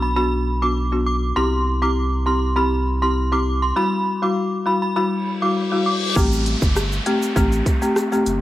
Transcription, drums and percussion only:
6.16 kick, shaker
6.32 shaker
6.46 closed hi-hat, shaker
6.62 kick, shaker
6.76 cross-stick, shaker
6.92 shaker
7.06 closed hi-hat, shaker
7.22 shaker
7.36 kick, shaker
7.52 shaker
7.66 kick, closed hi-hat, shaker
7.82 shaker
7.96 cross-stick, shaker
8.12 shaker
8.26 closed hi-hat, shaker

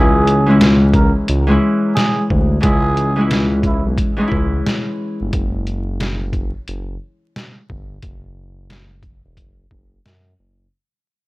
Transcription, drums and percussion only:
0.27 closed hi-hat
0.61 snare, closed hi-hat
0.94 kick, closed hi-hat
1.28 closed hi-hat
1.97 snare, closed hi-hat
2.30 kick
2.63 kick, closed hi-hat
2.97 closed hi-hat
3.31 snare, closed hi-hat
3.63 kick, closed hi-hat
3.98 kick, closed hi-hat
4.32 kick
4.67 snare, closed hi-hat
5.33 kick, closed hi-hat
5.67 closed hi-hat
6.00 snare, closed hi-hat
6.33 kick, closed hi-hat
6.68 closed hi-hat
7.36 snare, closed hi-hat
7.70 kick
8.03 kick, closed hi-hat
8.70 snare, closed hi-hat
9.03 kick, closed hi-hat
9.37 kick, closed hi-hat
9.71 kick
10.06 snare, closed hi-hat

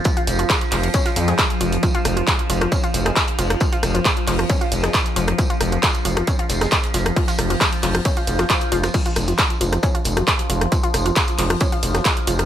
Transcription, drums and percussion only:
0.04 kick, closed hi-hat, tambourine
0.17 closed hi-hat
0.27 snare, open hi-hat, tambourine
0.39 closed hi-hat
0.50 kick, snare, clap, closed hi-hat, tambourine
0.61 closed hi-hat
0.72 clap, open hi-hat
0.83 closed hi-hat
0.94 kick, closed hi-hat, tambourine
1.06 snare, closed hi-hat
1.16 open hi-hat, tambourine
1.28 snare, closed hi-hat
1.39 kick, snare, clap, closed hi-hat, tambourine
1.50 closed hi-hat
1.60 open hi-hat, tambourine
1.73 closed hi-hat
1.83 kick, closed hi-hat, tambourine
1.95 closed hi-hat
2.05 cross-stick, open hi-hat, tambourine
2.17 closed hi-hat
2.27 kick, snare, clap, closed hi-hat, tambourine
2.39 closed hi-hat
2.50 open hi-hat, tambourine
2.61 cross-stick, closed hi-hat
2.72 kick, closed hi-hat, tambourine
2.84 closed hi-hat
2.94 open hi-hat, tambourine
3.06 cross-stick, closed hi-hat
3.16 kick, snare, clap, closed hi-hat, tambourine
3.28 closed hi-hat
3.39 open hi-hat, tambourine
3.50 cross-stick, closed hi-hat
3.60 kick, closed hi-hat, tambourine
3.73 closed hi-hat
3.82 cross-stick, snare, open hi-hat, tambourine
3.95 closed hi-hat
4.05 kick, snare, clap, closed hi-hat, tambourine
4.17 closed hi-hat
4.27 clap, open hi-hat
4.39 cross-stick, closed hi-hat
4.49 kick, closed hi-hat, tambourine
4.61 closed hi-hat
4.72 open hi-hat, tambourine
4.83 cross-stick, snare, closed hi-hat
4.93 kick, snare, clap, closed hi-hat, tambourine
5.06 closed hi-hat
5.16 open hi-hat, tambourine
5.28 cross-stick, closed hi-hat
5.38 kick, closed hi-hat, tambourine
5.50 closed hi-hat
5.61 cross-stick, open hi-hat, tambourine
5.72 closed hi-hat
5.83 kick, snare, clap, closed hi-hat, tambourine
5.95 closed hi-hat
6.05 open hi-hat, tambourine
6.17 cross-stick, closed hi-hat
6.27 kick, closed hi-hat, tambourine
6.39 closed hi-hat
6.49 snare, open hi-hat, tambourine
6.61 cross-stick, snare, closed hi-hat, tambourine
6.71 kick, snare, clap, closed hi-hat, tambourine
6.84 closed hi-hat
6.94 snare, open hi-hat, tambourine
7.06 cross-stick, closed hi-hat
7.16 kick, closed hi-hat, open hi-hat
7.28 snare, closed hi-hat, tambourine
7.39 cross-stick, open hi-hat
7.50 closed hi-hat, open hi-hat
7.60 kick, snare, clap, closed hi-hat, tambourine
7.73 closed hi-hat
7.83 clap, open hi-hat
7.95 cross-stick, closed hi-hat
8.05 kick, closed hi-hat, tambourine
8.17 closed hi-hat
8.27 open hi-hat, tambourine
8.38 cross-stick, snare, closed hi-hat
8.50 kick, cross-stick, snare, clap, closed hi-hat, tambourine
8.61 closed hi-hat
8.72 open hi-hat, tambourine
8.83 cross-stick, snare, closed hi-hat, tambourine
8.94 kick, closed hi-hat, crash, tambourine
9.06 closed hi-hat
9.16 cross-stick, open hi-hat, tambourine
9.28 closed hi-hat
9.38 kick, snare, clap, closed hi-hat, tambourine
9.50 closed hi-hat
9.61 open hi-hat, tambourine
9.73 cross-stick, closed hi-hat
9.83 kick, closed hi-hat, tambourine
9.95 closed hi-hat
10.04 open hi-hat, tambourine
10.17 cross-stick, closed hi-hat
10.27 kick, snare, clap, closed hi-hat, tambourine
10.39 closed hi-hat
10.50 open hi-hat, tambourine
10.61 cross-stick, closed hi-hat
10.72 kick, closed hi-hat, tambourine
10.84 closed hi-hat
10.94 cross-stick, snare, open hi-hat, tambourine
11.06 closed hi-hat
11.16 kick, snare, clap, closed hi-hat, tambourine
11.28 closed hi-hat
11.38 clap, open hi-hat
11.50 cross-stick, closed hi-hat
11.60 kick, closed hi-hat, tambourine
11.72 closed hi-hat
11.83 open hi-hat, tambourine
11.95 cross-stick, snare, closed hi-hat
12.05 kick, snare, clap, closed hi-hat, tambourine
12.17 closed hi-hat
12.27 open hi-hat, tambourine
12.39 cross-stick, closed hi-hat

